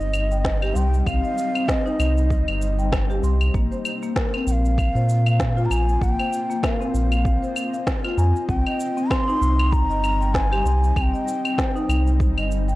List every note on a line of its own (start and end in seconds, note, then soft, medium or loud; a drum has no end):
0.00 0.72 G1 loud
0.00 3.50 G3 medium
0.00 12.75 C4 medium
0.00 3.50 D#4 medium
0.00 12.75 C5 medium
0.00 0.77 D#5 loud
0.00 3.50 D#5 medium
0.00 0.13 D#5 medium
0.00 shaker soft
0.14 claves medium
0.14 shaker medium
0.31 0.44 G5 medium
0.31 shaker soft
0.45 kick loud
0.45 snare loud
0.45 shaker soft
0.62 0.74 G4 medium
0.62 claves medium
0.62 shaker soft
0.75 1.02 C2 medium
0.75 1.00 G5 loud
0.75 1.05 C6 medium
0.75 shaker medium
0.94 shaker soft
1.00 1.08 G5 medium
1.06 1.21 C2 loud
1.06 1.22 C4 medium
1.06 1.70 F5 loud
1.06 kick medium
1.06 claves medium
1.06 shaker soft
1.24 1.37 D#5 medium
1.24 shaker soft
1.38 shaker medium
1.55 1.68 C4 medium
1.55 claves medium
1.55 shaker soft
1.68 1.84 C5 medium
1.68 2.92 D#5 medium
1.68 kick loud
1.68 snare loud
1.68 shaker soft
1.86 2.46 D#4 medium
1.86 shaker soft
1.99 2.43 C2 medium
1.99 claves medium
1.99 shaker medium
2.18 shaker soft
2.30 kick medium
2.30 shaker soft
2.48 3.20 G1 loud
2.48 2.61 D#5 medium
2.48 claves medium
2.48 shaker soft
2.62 shaker medium
2.79 2.91 G5 medium
2.79 shaker soft
2.92 kick loud
2.92 snare loud
2.92 claves medium
2.92 shaker soft
3.10 3.22 G4 medium
3.10 shaker soft
3.23 3.50 C2 medium
3.23 3.53 C6 medium
3.23 shaker medium
3.41 claves medium
3.41 shaker soft
3.54 3.69 A#1 loud
3.54 3.70 A#3 medium
3.54 8.45 A#3 medium
3.54 8.45 F4 medium
3.54 5.99 F5 medium
3.54 kick medium
3.54 shaker soft
3.72 3.84 C5 medium
3.72 shaker soft
3.85 claves medium
3.85 shaker medium
4.03 4.15 A#3 medium
4.03 shaker soft
4.16 4.32 A#4 medium
4.16 kick loud
4.16 snare medium
4.16 shaker soft
4.34 4.94 C4 medium
4.34 claves medium
4.34 shaker soft
4.47 4.91 A#1 medium
4.47 4.53 G5 medium
4.47 shaker medium
4.52 5.67 F5 loud
4.65 shaker soft
4.78 kick loud
4.78 claves medium
4.78 shaker soft
4.95 5.67 A#2 loud
4.95 5.08 C5 medium
4.95 shaker soft
5.09 shaker medium
5.26 5.39 F5 medium
5.26 claves medium
5.26 shaker soft
5.40 kick loud
5.40 snare medium
5.40 shaker soft
5.57 5.69 F4 medium
5.57 shaker soft
5.65 5.73 A#5 medium
5.70 5.97 A#1 medium
5.70 6.04 G#5 loud
5.70 6.00 A#5 medium
5.70 claves medium
5.70 shaker medium
5.89 shaker soft
6.01 6.16 A#1 loud
6.01 6.17 A#3 medium
6.01 12.75 D#5 medium
6.01 6.65 G5 loud
6.01 kick loud
6.01 shaker soft
6.19 6.32 C5 medium
6.19 claves medium
6.19 shaker soft
6.33 shaker medium
6.50 6.63 A#3 medium
6.50 shaker soft
6.63 6.79 A#4 medium
6.63 7.87 F5 medium
6.63 kick loud
6.63 snare medium
6.63 claves medium
6.63 shaker soft
6.80 7.41 C4 medium
6.80 shaker soft
6.94 7.38 A#1 medium
6.94 shaker medium
7.12 claves medium
7.12 shaker soft
7.25 kick medium
7.25 shaker soft
7.42 7.55 C5 medium
7.42 shaker soft
7.56 claves medium
7.56 shaker medium
7.74 7.86 F5 medium
7.74 shaker soft
7.87 kick loud
7.87 snare loud
7.87 shaker soft
8.04 8.17 F4 loud
8.04 claves medium
8.04 shaker soft
8.17 8.32 F2 medium
8.17 8.47 G#5 medium
8.17 8.47 A#5 medium
8.17 shaker medium
8.36 shaker soft
8.48 8.63 C2 medium
8.48 12.75 G3 medium
8.48 8.65 C4 medium
8.48 12.75 D#4 medium
8.48 9.12 G5 medium
8.48 kick medium
8.48 shaker soft
8.66 8.79 D#5 medium
8.66 claves medium
8.66 shaker soft
8.80 shaker medium
8.97 9.10 C4 medium
8.97 shaker soft
9.10 9.26 C5 medium
9.10 9.73 C6 loud
9.10 kick loud
9.10 snare loud
9.10 claves medium
9.10 shaker soft
9.28 9.88 D#4 loud
9.28 shaker soft
9.41 9.85 C2 loud
9.41 shaker medium
9.59 claves medium
9.59 shaker soft
9.72 10.36 A#5 loud
9.72 kick medium
9.72 shaker soft
9.90 10.62 G1 loud
9.90 10.03 D#5 medium
9.90 shaker soft
10.04 claves medium
10.04 shaker medium
10.21 10.34 G5 medium
10.21 shaker soft
10.34 10.97 G#5 medium
10.34 kick loud
10.34 snare medium
10.34 shaker soft
10.52 10.64 G4 medium
10.52 claves medium
10.52 shaker soft
10.65 10.92 C2 medium
10.65 10.95 C6 medium
10.65 shaker medium
10.84 shaker soft
10.96 11.11 C2 loud
10.96 11.12 C4 medium
10.96 11.03 G#5 medium
10.96 kick medium
10.96 claves medium
10.96 shaker soft
11.02 12.20 G5 medium
11.14 11.26 D#5 medium
11.14 shaker soft
11.28 shaker medium
11.45 11.57 C4 medium
11.45 claves medium
11.45 shaker soft
11.58 11.74 C5 medium
11.58 kick loud
11.58 snare medium
11.58 shaker soft
11.76 12.36 D#4 medium
11.76 shaker soft
11.89 12.33 C2 medium
11.89 claves medium
11.89 shaker medium
12.07 shaker soft
12.20 kick loud
12.20 shaker soft
12.37 12.75 G1 loud
12.37 12.50 D#5 medium
12.37 claves medium
12.37 shaker soft
12.51 shaker medium
12.68 12.75 G5 medium
12.68 shaker soft